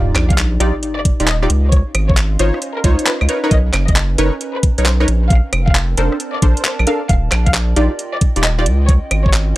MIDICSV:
0, 0, Header, 1, 7, 480
1, 0, Start_track
1, 0, Tempo, 447761
1, 1846, Time_signature, 4, 2, 24, 8
1, 10263, End_track
2, 0, Start_track
2, 0, Title_t, "Ambient pad"
2, 0, Program_c, 0, 92
2, 0, Note_on_c, 0, 63, 71
2, 132, Note_on_c, 0, 67, 77
2, 251, Note_on_c, 0, 74, 75
2, 695, Note_on_c, 0, 77, 84
2, 1606, Note_off_c, 0, 74, 0
2, 1606, Note_on_c, 0, 61, 82
2, 1845, Note_on_c, 0, 75, 69
2, 1852, Note_on_c, 0, 84, 83
2, 2389, Note_off_c, 0, 63, 0
2, 2390, Note_off_c, 0, 67, 0
2, 3528, Note_off_c, 0, 84, 0
2, 3632, Note_on_c, 0, 71, 75
2, 4310, Note_off_c, 0, 77, 0
2, 4423, Note_on_c, 0, 82, 71
2, 5445, Note_on_c, 0, 60, 76
2, 5446, Note_off_c, 0, 61, 0
2, 5446, Note_off_c, 0, 75, 0
2, 5447, Note_off_c, 0, 82, 0
2, 5448, Note_off_c, 0, 71, 0
2, 5622, Note_on_c, 0, 70, 76
2, 5981, Note_on_c, 0, 81, 92
2, 6096, Note_on_c, 0, 74, 70
2, 7591, Note_off_c, 0, 74, 0
2, 7604, Note_on_c, 0, 74, 91
2, 7874, Note_on_c, 0, 75, 76
2, 7916, Note_on_c, 0, 65, 77
2, 8292, Note_off_c, 0, 81, 0
2, 8293, Note_off_c, 0, 60, 0
2, 8294, Note_off_c, 0, 70, 0
2, 8370, Note_on_c, 0, 79, 72
2, 9285, Note_off_c, 0, 74, 0
2, 9287, Note_on_c, 0, 61, 82
2, 10068, Note_off_c, 0, 79, 0
2, 10180, Note_on_c, 0, 84, 65
2, 10263, Note_off_c, 0, 61, 0
2, 10263, Note_off_c, 0, 65, 0
2, 10263, Note_off_c, 0, 75, 0
2, 10263, Note_off_c, 0, 84, 0
2, 10263, End_track
3, 0, Start_track
3, 0, Title_t, "Violin section"
3, 0, Program_c, 1, 48
3, 0, Note_on_c, 1, 77, 100
3, 162, Note_off_c, 1, 77, 0
3, 326, Note_on_c, 1, 77, 90
3, 554, Note_off_c, 1, 77, 0
3, 1047, Note_on_c, 1, 74, 93
3, 1274, Note_off_c, 1, 74, 0
3, 1367, Note_on_c, 1, 75, 96
3, 1697, Note_off_c, 1, 75, 0
3, 1851, Note_on_c, 1, 73, 98
3, 2082, Note_off_c, 1, 73, 0
3, 2248, Note_on_c, 1, 73, 96
3, 2475, Note_off_c, 1, 73, 0
3, 2967, Note_on_c, 1, 70, 97
3, 3194, Note_off_c, 1, 70, 0
3, 3290, Note_on_c, 1, 71, 95
3, 3618, Note_off_c, 1, 71, 0
3, 3766, Note_on_c, 1, 75, 102
3, 4000, Note_off_c, 1, 75, 0
3, 4167, Note_on_c, 1, 75, 94
3, 4394, Note_off_c, 1, 75, 0
3, 4884, Note_on_c, 1, 71, 97
3, 5113, Note_off_c, 1, 71, 0
3, 5209, Note_on_c, 1, 72, 94
3, 5538, Note_off_c, 1, 72, 0
3, 5687, Note_on_c, 1, 77, 99
3, 5921, Note_off_c, 1, 77, 0
3, 6085, Note_on_c, 1, 77, 92
3, 6313, Note_off_c, 1, 77, 0
3, 6802, Note_on_c, 1, 74, 95
3, 7032, Note_off_c, 1, 74, 0
3, 7125, Note_on_c, 1, 72, 98
3, 7456, Note_off_c, 1, 72, 0
3, 7602, Note_on_c, 1, 77, 96
3, 7838, Note_off_c, 1, 77, 0
3, 8004, Note_on_c, 1, 77, 94
3, 8233, Note_off_c, 1, 77, 0
3, 8724, Note_on_c, 1, 74, 95
3, 8952, Note_off_c, 1, 74, 0
3, 9046, Note_on_c, 1, 75, 95
3, 9376, Note_off_c, 1, 75, 0
3, 9530, Note_on_c, 1, 73, 100
3, 9762, Note_off_c, 1, 73, 0
3, 9925, Note_on_c, 1, 73, 96
3, 10153, Note_off_c, 1, 73, 0
3, 10263, End_track
4, 0, Start_track
4, 0, Title_t, "Synth stab"
4, 0, Program_c, 2, 62
4, 0, Note_on_c, 2, 63, 101
4, 0, Note_on_c, 2, 65, 94
4, 0, Note_on_c, 2, 67, 95
4, 0, Note_on_c, 2, 74, 114
4, 612, Note_off_c, 2, 65, 0
4, 613, Note_off_c, 2, 63, 0
4, 613, Note_off_c, 2, 67, 0
4, 613, Note_off_c, 2, 74, 0
4, 645, Note_on_c, 2, 67, 88
4, 645, Note_on_c, 2, 74, 109
4, 646, Note_on_c, 2, 63, 95
4, 646, Note_on_c, 2, 65, 88
4, 800, Note_off_c, 2, 67, 0
4, 800, Note_off_c, 2, 74, 0
4, 801, Note_off_c, 2, 63, 0
4, 801, Note_off_c, 2, 65, 0
4, 1286, Note_on_c, 2, 63, 77
4, 1286, Note_on_c, 2, 65, 72
4, 1286, Note_on_c, 2, 67, 72
4, 1286, Note_on_c, 2, 74, 87
4, 1364, Note_off_c, 2, 63, 0
4, 1364, Note_off_c, 2, 67, 0
4, 1364, Note_off_c, 2, 74, 0
4, 1365, Note_off_c, 2, 65, 0
4, 1528, Note_on_c, 2, 63, 95
4, 1528, Note_on_c, 2, 65, 84
4, 1528, Note_on_c, 2, 67, 83
4, 1528, Note_on_c, 2, 74, 103
4, 1598, Note_off_c, 2, 63, 0
4, 1598, Note_off_c, 2, 65, 0
4, 1598, Note_off_c, 2, 67, 0
4, 1598, Note_off_c, 2, 74, 0
4, 2566, Note_on_c, 2, 63, 86
4, 2567, Note_on_c, 2, 73, 90
4, 2568, Note_on_c, 2, 65, 80
4, 2568, Note_on_c, 2, 72, 79
4, 2770, Note_off_c, 2, 63, 0
4, 2771, Note_off_c, 2, 65, 0
4, 2771, Note_off_c, 2, 72, 0
4, 2771, Note_off_c, 2, 73, 0
4, 3045, Note_on_c, 2, 63, 100
4, 3045, Note_on_c, 2, 65, 89
4, 3045, Note_on_c, 2, 72, 90
4, 3045, Note_on_c, 2, 73, 105
4, 3506, Note_off_c, 2, 63, 0
4, 3506, Note_off_c, 2, 65, 0
4, 3506, Note_off_c, 2, 72, 0
4, 3506, Note_off_c, 2, 73, 0
4, 3524, Note_on_c, 2, 63, 75
4, 3524, Note_on_c, 2, 70, 67
4, 3524, Note_on_c, 2, 71, 67
4, 3525, Note_on_c, 2, 73, 81
4, 3645, Note_off_c, 2, 70, 0
4, 3646, Note_off_c, 2, 63, 0
4, 3646, Note_off_c, 2, 71, 0
4, 3646, Note_off_c, 2, 73, 0
4, 3684, Note_on_c, 2, 63, 87
4, 3684, Note_on_c, 2, 70, 82
4, 3684, Note_on_c, 2, 71, 81
4, 3684, Note_on_c, 2, 73, 98
4, 3854, Note_off_c, 2, 63, 0
4, 3854, Note_off_c, 2, 71, 0
4, 3854, Note_off_c, 2, 73, 0
4, 3855, Note_off_c, 2, 70, 0
4, 4485, Note_on_c, 2, 63, 95
4, 4485, Note_on_c, 2, 70, 92
4, 4485, Note_on_c, 2, 71, 88
4, 4485, Note_on_c, 2, 73, 108
4, 4640, Note_off_c, 2, 63, 0
4, 4640, Note_off_c, 2, 70, 0
4, 4640, Note_off_c, 2, 71, 0
4, 4640, Note_off_c, 2, 73, 0
4, 5125, Note_on_c, 2, 63, 79
4, 5125, Note_on_c, 2, 70, 74
4, 5125, Note_on_c, 2, 71, 71
4, 5125, Note_on_c, 2, 73, 88
4, 5204, Note_off_c, 2, 63, 0
4, 5204, Note_off_c, 2, 70, 0
4, 5204, Note_off_c, 2, 71, 0
4, 5204, Note_off_c, 2, 73, 0
4, 5363, Note_on_c, 2, 71, 83
4, 5364, Note_on_c, 2, 63, 89
4, 5364, Note_on_c, 2, 70, 86
4, 5364, Note_on_c, 2, 73, 101
4, 5435, Note_off_c, 2, 71, 0
4, 5436, Note_off_c, 2, 63, 0
4, 5436, Note_off_c, 2, 70, 0
4, 5436, Note_off_c, 2, 73, 0
4, 6406, Note_on_c, 2, 62, 83
4, 6406, Note_on_c, 2, 70, 77
4, 6407, Note_on_c, 2, 69, 78
4, 6407, Note_on_c, 2, 72, 96
4, 6610, Note_off_c, 2, 62, 0
4, 6610, Note_off_c, 2, 70, 0
4, 6611, Note_off_c, 2, 69, 0
4, 6611, Note_off_c, 2, 72, 0
4, 6887, Note_on_c, 2, 62, 76
4, 6887, Note_on_c, 2, 70, 70
4, 6887, Note_on_c, 2, 72, 87
4, 6888, Note_on_c, 2, 69, 70
4, 7091, Note_off_c, 2, 62, 0
4, 7091, Note_off_c, 2, 69, 0
4, 7091, Note_off_c, 2, 70, 0
4, 7091, Note_off_c, 2, 72, 0
4, 7367, Note_on_c, 2, 62, 92
4, 7367, Note_on_c, 2, 70, 83
4, 7368, Note_on_c, 2, 69, 82
4, 7368, Note_on_c, 2, 77, 99
4, 7521, Note_off_c, 2, 62, 0
4, 7521, Note_off_c, 2, 70, 0
4, 7522, Note_off_c, 2, 69, 0
4, 7522, Note_off_c, 2, 77, 0
4, 8324, Note_on_c, 2, 65, 87
4, 8324, Note_on_c, 2, 67, 89
4, 8324, Note_on_c, 2, 74, 109
4, 8325, Note_on_c, 2, 63, 92
4, 8480, Note_off_c, 2, 63, 0
4, 8480, Note_off_c, 2, 65, 0
4, 8480, Note_off_c, 2, 67, 0
4, 8480, Note_off_c, 2, 74, 0
4, 8963, Note_on_c, 2, 74, 89
4, 8964, Note_on_c, 2, 63, 77
4, 8964, Note_on_c, 2, 65, 71
4, 8964, Note_on_c, 2, 67, 73
4, 9043, Note_off_c, 2, 63, 0
4, 9043, Note_off_c, 2, 74, 0
4, 9044, Note_off_c, 2, 65, 0
4, 9044, Note_off_c, 2, 67, 0
4, 9203, Note_on_c, 2, 63, 91
4, 9203, Note_on_c, 2, 67, 87
4, 9203, Note_on_c, 2, 74, 104
4, 9204, Note_on_c, 2, 65, 88
4, 9275, Note_off_c, 2, 63, 0
4, 9275, Note_off_c, 2, 67, 0
4, 9275, Note_off_c, 2, 74, 0
4, 9276, Note_off_c, 2, 65, 0
4, 10263, End_track
5, 0, Start_track
5, 0, Title_t, "Sub bass"
5, 0, Program_c, 3, 38
5, 0, Note_on_c, 3, 27, 100
5, 136, Note_off_c, 3, 27, 0
5, 165, Note_on_c, 3, 34, 78
5, 622, Note_off_c, 3, 34, 0
5, 645, Note_on_c, 3, 34, 104
5, 775, Note_off_c, 3, 34, 0
5, 1284, Note_on_c, 3, 27, 88
5, 1582, Note_off_c, 3, 27, 0
5, 1607, Note_on_c, 3, 37, 90
5, 1959, Note_off_c, 3, 37, 0
5, 2086, Note_on_c, 3, 32, 80
5, 2542, Note_off_c, 3, 32, 0
5, 2569, Note_on_c, 3, 32, 104
5, 2697, Note_off_c, 3, 32, 0
5, 3046, Note_on_c, 3, 37, 84
5, 3175, Note_off_c, 3, 37, 0
5, 3445, Note_on_c, 3, 37, 101
5, 3511, Note_off_c, 3, 37, 0
5, 3766, Note_on_c, 3, 35, 100
5, 3976, Note_off_c, 3, 35, 0
5, 4004, Note_on_c, 3, 30, 82
5, 4461, Note_off_c, 3, 30, 0
5, 4486, Note_on_c, 3, 30, 103
5, 4615, Note_off_c, 3, 30, 0
5, 5125, Note_on_c, 3, 35, 89
5, 5422, Note_off_c, 3, 35, 0
5, 5446, Note_on_c, 3, 34, 91
5, 5798, Note_off_c, 3, 34, 0
5, 5926, Note_on_c, 3, 29, 80
5, 6382, Note_off_c, 3, 29, 0
5, 6406, Note_on_c, 3, 29, 100
5, 6536, Note_off_c, 3, 29, 0
5, 6886, Note_on_c, 3, 34, 82
5, 7015, Note_off_c, 3, 34, 0
5, 7284, Note_on_c, 3, 34, 100
5, 7351, Note_off_c, 3, 34, 0
5, 7606, Note_on_c, 3, 27, 97
5, 7816, Note_off_c, 3, 27, 0
5, 7846, Note_on_c, 3, 34, 81
5, 8302, Note_off_c, 3, 34, 0
5, 8324, Note_on_c, 3, 34, 106
5, 8455, Note_off_c, 3, 34, 0
5, 8962, Note_on_c, 3, 27, 87
5, 9285, Note_on_c, 3, 37, 93
5, 9301, Note_off_c, 3, 27, 0
5, 9637, Note_off_c, 3, 37, 0
5, 9768, Note_on_c, 3, 32, 78
5, 10223, Note_off_c, 3, 32, 0
5, 10263, End_track
6, 0, Start_track
6, 0, Title_t, "Sub drop"
6, 0, Program_c, 4, 103
6, 0, Note_on_c, 4, 60, 78
6, 1846, Note_off_c, 4, 60, 0
6, 10263, End_track
7, 0, Start_track
7, 0, Title_t, "Drums"
7, 167, Note_on_c, 9, 37, 72
7, 167, Note_on_c, 9, 39, 63
7, 167, Note_on_c, 9, 42, 116
7, 167, Note_on_c, 9, 75, 78
7, 274, Note_off_c, 9, 37, 0
7, 274, Note_off_c, 9, 39, 0
7, 274, Note_off_c, 9, 42, 0
7, 274, Note_off_c, 9, 75, 0
7, 325, Note_on_c, 9, 42, 66
7, 326, Note_on_c, 9, 36, 105
7, 408, Note_off_c, 9, 42, 0
7, 408, Note_on_c, 9, 39, 118
7, 408, Note_on_c, 9, 42, 66
7, 433, Note_off_c, 9, 36, 0
7, 515, Note_off_c, 9, 39, 0
7, 515, Note_off_c, 9, 42, 0
7, 647, Note_on_c, 9, 42, 111
7, 754, Note_off_c, 9, 42, 0
7, 887, Note_on_c, 9, 42, 66
7, 994, Note_off_c, 9, 42, 0
7, 1127, Note_on_c, 9, 36, 111
7, 1127, Note_on_c, 9, 42, 108
7, 1234, Note_off_c, 9, 36, 0
7, 1234, Note_off_c, 9, 42, 0
7, 1285, Note_on_c, 9, 42, 64
7, 1367, Note_off_c, 9, 42, 0
7, 1367, Note_on_c, 9, 39, 122
7, 1367, Note_on_c, 9, 42, 67
7, 1474, Note_off_c, 9, 39, 0
7, 1474, Note_off_c, 9, 42, 0
7, 1527, Note_on_c, 9, 37, 53
7, 1607, Note_on_c, 9, 42, 111
7, 1634, Note_off_c, 9, 37, 0
7, 1714, Note_off_c, 9, 42, 0
7, 1847, Note_on_c, 9, 36, 127
7, 1847, Note_on_c, 9, 42, 67
7, 1954, Note_off_c, 9, 36, 0
7, 1954, Note_off_c, 9, 42, 0
7, 2086, Note_on_c, 9, 37, 71
7, 2086, Note_on_c, 9, 42, 109
7, 2086, Note_on_c, 9, 75, 75
7, 2194, Note_off_c, 9, 37, 0
7, 2194, Note_off_c, 9, 42, 0
7, 2194, Note_off_c, 9, 75, 0
7, 2246, Note_on_c, 9, 36, 113
7, 2327, Note_on_c, 9, 39, 119
7, 2327, Note_on_c, 9, 42, 65
7, 2353, Note_off_c, 9, 36, 0
7, 2434, Note_off_c, 9, 39, 0
7, 2434, Note_off_c, 9, 42, 0
7, 2566, Note_on_c, 9, 42, 107
7, 2673, Note_off_c, 9, 42, 0
7, 2724, Note_on_c, 9, 37, 57
7, 2806, Note_on_c, 9, 42, 66
7, 2832, Note_off_c, 9, 37, 0
7, 2913, Note_off_c, 9, 42, 0
7, 3045, Note_on_c, 9, 42, 106
7, 3046, Note_on_c, 9, 36, 116
7, 3152, Note_off_c, 9, 42, 0
7, 3154, Note_off_c, 9, 36, 0
7, 3204, Note_on_c, 9, 42, 62
7, 3285, Note_off_c, 9, 42, 0
7, 3285, Note_on_c, 9, 39, 127
7, 3285, Note_on_c, 9, 42, 65
7, 3392, Note_off_c, 9, 39, 0
7, 3392, Note_off_c, 9, 42, 0
7, 3443, Note_on_c, 9, 37, 56
7, 3443, Note_on_c, 9, 75, 75
7, 3523, Note_on_c, 9, 42, 106
7, 3550, Note_off_c, 9, 37, 0
7, 3550, Note_off_c, 9, 75, 0
7, 3630, Note_off_c, 9, 42, 0
7, 3764, Note_on_c, 9, 42, 66
7, 3766, Note_on_c, 9, 36, 127
7, 3871, Note_off_c, 9, 42, 0
7, 3873, Note_off_c, 9, 36, 0
7, 4004, Note_on_c, 9, 37, 72
7, 4004, Note_on_c, 9, 39, 66
7, 4004, Note_on_c, 9, 42, 100
7, 4004, Note_on_c, 9, 75, 79
7, 4111, Note_off_c, 9, 37, 0
7, 4111, Note_off_c, 9, 39, 0
7, 4111, Note_off_c, 9, 42, 0
7, 4111, Note_off_c, 9, 75, 0
7, 4162, Note_on_c, 9, 42, 64
7, 4165, Note_on_c, 9, 36, 114
7, 4245, Note_off_c, 9, 42, 0
7, 4245, Note_on_c, 9, 39, 127
7, 4245, Note_on_c, 9, 42, 64
7, 4272, Note_off_c, 9, 36, 0
7, 4352, Note_off_c, 9, 39, 0
7, 4352, Note_off_c, 9, 42, 0
7, 4485, Note_on_c, 9, 42, 108
7, 4592, Note_off_c, 9, 42, 0
7, 4725, Note_on_c, 9, 42, 64
7, 4832, Note_off_c, 9, 42, 0
7, 4964, Note_on_c, 9, 42, 105
7, 4966, Note_on_c, 9, 36, 117
7, 5072, Note_off_c, 9, 42, 0
7, 5073, Note_off_c, 9, 36, 0
7, 5124, Note_on_c, 9, 42, 64
7, 5206, Note_off_c, 9, 42, 0
7, 5206, Note_on_c, 9, 39, 127
7, 5206, Note_on_c, 9, 42, 66
7, 5313, Note_off_c, 9, 39, 0
7, 5313, Note_off_c, 9, 42, 0
7, 5365, Note_on_c, 9, 37, 54
7, 5445, Note_on_c, 9, 42, 108
7, 5472, Note_off_c, 9, 37, 0
7, 5552, Note_off_c, 9, 42, 0
7, 5686, Note_on_c, 9, 36, 126
7, 5686, Note_on_c, 9, 42, 65
7, 5793, Note_off_c, 9, 36, 0
7, 5793, Note_off_c, 9, 42, 0
7, 5925, Note_on_c, 9, 37, 69
7, 5925, Note_on_c, 9, 42, 98
7, 5925, Note_on_c, 9, 75, 79
7, 6032, Note_off_c, 9, 37, 0
7, 6032, Note_off_c, 9, 42, 0
7, 6032, Note_off_c, 9, 75, 0
7, 6084, Note_on_c, 9, 36, 113
7, 6165, Note_on_c, 9, 39, 127
7, 6165, Note_on_c, 9, 42, 62
7, 6192, Note_off_c, 9, 36, 0
7, 6272, Note_off_c, 9, 39, 0
7, 6272, Note_off_c, 9, 42, 0
7, 6405, Note_on_c, 9, 42, 101
7, 6512, Note_off_c, 9, 42, 0
7, 6565, Note_on_c, 9, 37, 53
7, 6645, Note_on_c, 9, 42, 65
7, 6672, Note_off_c, 9, 37, 0
7, 6752, Note_off_c, 9, 42, 0
7, 6885, Note_on_c, 9, 42, 106
7, 6886, Note_on_c, 9, 36, 115
7, 6992, Note_off_c, 9, 42, 0
7, 6993, Note_off_c, 9, 36, 0
7, 7043, Note_on_c, 9, 42, 63
7, 7124, Note_off_c, 9, 42, 0
7, 7124, Note_on_c, 9, 39, 127
7, 7124, Note_on_c, 9, 42, 63
7, 7231, Note_off_c, 9, 39, 0
7, 7231, Note_off_c, 9, 42, 0
7, 7283, Note_on_c, 9, 37, 52
7, 7283, Note_on_c, 9, 75, 78
7, 7363, Note_on_c, 9, 42, 104
7, 7390, Note_off_c, 9, 37, 0
7, 7390, Note_off_c, 9, 75, 0
7, 7470, Note_off_c, 9, 42, 0
7, 7603, Note_on_c, 9, 42, 70
7, 7605, Note_on_c, 9, 36, 122
7, 7711, Note_off_c, 9, 42, 0
7, 7713, Note_off_c, 9, 36, 0
7, 7844, Note_on_c, 9, 37, 68
7, 7844, Note_on_c, 9, 39, 62
7, 7844, Note_on_c, 9, 42, 103
7, 7844, Note_on_c, 9, 75, 83
7, 7952, Note_off_c, 9, 37, 0
7, 7952, Note_off_c, 9, 39, 0
7, 7952, Note_off_c, 9, 42, 0
7, 7952, Note_off_c, 9, 75, 0
7, 8002, Note_on_c, 9, 42, 58
7, 8004, Note_on_c, 9, 36, 105
7, 8084, Note_off_c, 9, 42, 0
7, 8084, Note_on_c, 9, 39, 119
7, 8084, Note_on_c, 9, 42, 68
7, 8112, Note_off_c, 9, 36, 0
7, 8191, Note_off_c, 9, 39, 0
7, 8191, Note_off_c, 9, 42, 0
7, 8323, Note_on_c, 9, 42, 102
7, 8431, Note_off_c, 9, 42, 0
7, 8564, Note_on_c, 9, 42, 65
7, 8671, Note_off_c, 9, 42, 0
7, 8804, Note_on_c, 9, 42, 98
7, 8806, Note_on_c, 9, 36, 115
7, 8911, Note_off_c, 9, 42, 0
7, 8913, Note_off_c, 9, 36, 0
7, 8963, Note_on_c, 9, 42, 63
7, 9044, Note_off_c, 9, 42, 0
7, 9044, Note_on_c, 9, 39, 125
7, 9044, Note_on_c, 9, 42, 68
7, 9151, Note_off_c, 9, 39, 0
7, 9151, Note_off_c, 9, 42, 0
7, 9203, Note_on_c, 9, 37, 48
7, 9284, Note_on_c, 9, 42, 105
7, 9310, Note_off_c, 9, 37, 0
7, 9392, Note_off_c, 9, 42, 0
7, 9526, Note_on_c, 9, 36, 118
7, 9526, Note_on_c, 9, 42, 72
7, 9633, Note_off_c, 9, 36, 0
7, 9633, Note_off_c, 9, 42, 0
7, 9766, Note_on_c, 9, 37, 64
7, 9766, Note_on_c, 9, 42, 107
7, 9766, Note_on_c, 9, 75, 85
7, 9873, Note_off_c, 9, 37, 0
7, 9873, Note_off_c, 9, 42, 0
7, 9873, Note_off_c, 9, 75, 0
7, 9925, Note_on_c, 9, 36, 104
7, 10006, Note_on_c, 9, 39, 116
7, 10006, Note_on_c, 9, 42, 70
7, 10033, Note_off_c, 9, 36, 0
7, 10113, Note_off_c, 9, 39, 0
7, 10113, Note_off_c, 9, 42, 0
7, 10263, End_track
0, 0, End_of_file